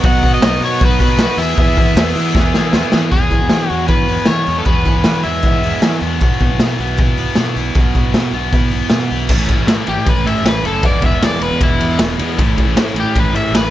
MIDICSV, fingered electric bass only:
0, 0, Header, 1, 2, 480
1, 0, Start_track
1, 0, Key_signature, 4, "major"
1, 0, Tempo, 385852
1, 47, Time_signature, 4, 2, 24, 8
1, 17047, End_track
2, 0, Start_track
2, 0, Title_t, "Fingered electric bass"
2, 0, Program_c, 0, 33
2, 45, Note_on_c, 0, 35, 105
2, 256, Note_off_c, 0, 35, 0
2, 277, Note_on_c, 0, 47, 89
2, 492, Note_off_c, 0, 47, 0
2, 503, Note_on_c, 0, 35, 105
2, 724, Note_off_c, 0, 35, 0
2, 756, Note_on_c, 0, 47, 97
2, 970, Note_off_c, 0, 47, 0
2, 1007, Note_on_c, 0, 35, 116
2, 1217, Note_off_c, 0, 35, 0
2, 1243, Note_on_c, 0, 47, 92
2, 1452, Note_on_c, 0, 35, 96
2, 1470, Note_off_c, 0, 47, 0
2, 1571, Note_off_c, 0, 35, 0
2, 1706, Note_on_c, 0, 40, 95
2, 1924, Note_off_c, 0, 40, 0
2, 1958, Note_on_c, 0, 40, 104
2, 2171, Note_off_c, 0, 40, 0
2, 2197, Note_on_c, 0, 52, 84
2, 2409, Note_off_c, 0, 52, 0
2, 2435, Note_on_c, 0, 40, 105
2, 2648, Note_off_c, 0, 40, 0
2, 2679, Note_on_c, 0, 52, 91
2, 2890, Note_off_c, 0, 52, 0
2, 2918, Note_on_c, 0, 40, 113
2, 3130, Note_off_c, 0, 40, 0
2, 3161, Note_on_c, 0, 52, 84
2, 3395, Note_on_c, 0, 40, 93
2, 3414, Note_off_c, 0, 52, 0
2, 3503, Note_off_c, 0, 40, 0
2, 3651, Note_on_c, 0, 52, 96
2, 3857, Note_off_c, 0, 52, 0
2, 3868, Note_on_c, 0, 40, 91
2, 4085, Note_off_c, 0, 40, 0
2, 4106, Note_on_c, 0, 52, 81
2, 4218, Note_off_c, 0, 52, 0
2, 4249, Note_on_c, 0, 40, 84
2, 4351, Note_off_c, 0, 40, 0
2, 4369, Note_on_c, 0, 52, 78
2, 4576, Note_off_c, 0, 52, 0
2, 4607, Note_on_c, 0, 40, 76
2, 4816, Note_off_c, 0, 40, 0
2, 4835, Note_on_c, 0, 52, 80
2, 5049, Note_off_c, 0, 52, 0
2, 5088, Note_on_c, 0, 40, 71
2, 5191, Note_off_c, 0, 40, 0
2, 5325, Note_on_c, 0, 52, 82
2, 5536, Note_off_c, 0, 52, 0
2, 5567, Note_on_c, 0, 40, 88
2, 5777, Note_off_c, 0, 40, 0
2, 5790, Note_on_c, 0, 40, 84
2, 6008, Note_off_c, 0, 40, 0
2, 6034, Note_on_c, 0, 52, 83
2, 6145, Note_off_c, 0, 52, 0
2, 6169, Note_on_c, 0, 40, 85
2, 6273, Note_off_c, 0, 40, 0
2, 6289, Note_on_c, 0, 52, 83
2, 6499, Note_off_c, 0, 52, 0
2, 6528, Note_on_c, 0, 40, 73
2, 6739, Note_off_c, 0, 40, 0
2, 6756, Note_on_c, 0, 52, 86
2, 6973, Note_off_c, 0, 52, 0
2, 7008, Note_on_c, 0, 40, 75
2, 7114, Note_off_c, 0, 40, 0
2, 7238, Note_on_c, 0, 52, 84
2, 7454, Note_off_c, 0, 52, 0
2, 7478, Note_on_c, 0, 40, 93
2, 7695, Note_off_c, 0, 40, 0
2, 7723, Note_on_c, 0, 35, 86
2, 7937, Note_off_c, 0, 35, 0
2, 7967, Note_on_c, 0, 47, 87
2, 8075, Note_off_c, 0, 47, 0
2, 8083, Note_on_c, 0, 35, 88
2, 8184, Note_off_c, 0, 35, 0
2, 8191, Note_on_c, 0, 47, 84
2, 8411, Note_off_c, 0, 47, 0
2, 8447, Note_on_c, 0, 35, 80
2, 8660, Note_off_c, 0, 35, 0
2, 8681, Note_on_c, 0, 47, 88
2, 8897, Note_off_c, 0, 47, 0
2, 8929, Note_on_c, 0, 35, 75
2, 9036, Note_off_c, 0, 35, 0
2, 9169, Note_on_c, 0, 47, 83
2, 9382, Note_off_c, 0, 47, 0
2, 9403, Note_on_c, 0, 35, 86
2, 9619, Note_off_c, 0, 35, 0
2, 9640, Note_on_c, 0, 35, 91
2, 9857, Note_off_c, 0, 35, 0
2, 9886, Note_on_c, 0, 47, 87
2, 9995, Note_off_c, 0, 47, 0
2, 10001, Note_on_c, 0, 35, 80
2, 10112, Note_off_c, 0, 35, 0
2, 10123, Note_on_c, 0, 47, 83
2, 10339, Note_off_c, 0, 47, 0
2, 10348, Note_on_c, 0, 35, 76
2, 10571, Note_off_c, 0, 35, 0
2, 10604, Note_on_c, 0, 47, 86
2, 10819, Note_off_c, 0, 47, 0
2, 10842, Note_on_c, 0, 35, 75
2, 10953, Note_off_c, 0, 35, 0
2, 11076, Note_on_c, 0, 47, 83
2, 11295, Note_off_c, 0, 47, 0
2, 11330, Note_on_c, 0, 35, 86
2, 11543, Note_off_c, 0, 35, 0
2, 11555, Note_on_c, 0, 33, 94
2, 11774, Note_off_c, 0, 33, 0
2, 11795, Note_on_c, 0, 45, 81
2, 11909, Note_off_c, 0, 45, 0
2, 11927, Note_on_c, 0, 33, 82
2, 12030, Note_off_c, 0, 33, 0
2, 12030, Note_on_c, 0, 45, 91
2, 12252, Note_off_c, 0, 45, 0
2, 12291, Note_on_c, 0, 33, 82
2, 12391, Note_off_c, 0, 33, 0
2, 12398, Note_on_c, 0, 45, 81
2, 12504, Note_off_c, 0, 45, 0
2, 12512, Note_on_c, 0, 33, 82
2, 12733, Note_off_c, 0, 33, 0
2, 12748, Note_on_c, 0, 45, 77
2, 12971, Note_off_c, 0, 45, 0
2, 12979, Note_on_c, 0, 33, 84
2, 13228, Note_on_c, 0, 30, 85
2, 13247, Note_off_c, 0, 33, 0
2, 13466, Note_off_c, 0, 30, 0
2, 13466, Note_on_c, 0, 28, 103
2, 13689, Note_off_c, 0, 28, 0
2, 13703, Note_on_c, 0, 40, 80
2, 13822, Note_off_c, 0, 40, 0
2, 13840, Note_on_c, 0, 28, 88
2, 13957, Note_on_c, 0, 40, 97
2, 13975, Note_off_c, 0, 28, 0
2, 14175, Note_off_c, 0, 40, 0
2, 14193, Note_on_c, 0, 28, 83
2, 14307, Note_off_c, 0, 28, 0
2, 14320, Note_on_c, 0, 40, 77
2, 14431, Note_off_c, 0, 40, 0
2, 14437, Note_on_c, 0, 28, 95
2, 14655, Note_off_c, 0, 28, 0
2, 14686, Note_on_c, 0, 40, 83
2, 14899, Note_off_c, 0, 40, 0
2, 14913, Note_on_c, 0, 28, 85
2, 15151, Note_on_c, 0, 40, 86
2, 15170, Note_off_c, 0, 28, 0
2, 15401, Note_on_c, 0, 33, 96
2, 15419, Note_off_c, 0, 40, 0
2, 15616, Note_off_c, 0, 33, 0
2, 15641, Note_on_c, 0, 45, 81
2, 15737, Note_off_c, 0, 45, 0
2, 15745, Note_on_c, 0, 33, 94
2, 15875, Note_on_c, 0, 45, 101
2, 15894, Note_off_c, 0, 33, 0
2, 16092, Note_off_c, 0, 45, 0
2, 16100, Note_on_c, 0, 33, 78
2, 16205, Note_off_c, 0, 33, 0
2, 16213, Note_on_c, 0, 45, 83
2, 16334, Note_off_c, 0, 45, 0
2, 16361, Note_on_c, 0, 33, 94
2, 16575, Note_off_c, 0, 33, 0
2, 16592, Note_on_c, 0, 45, 87
2, 16809, Note_off_c, 0, 45, 0
2, 16818, Note_on_c, 0, 33, 89
2, 17047, Note_off_c, 0, 33, 0
2, 17047, End_track
0, 0, End_of_file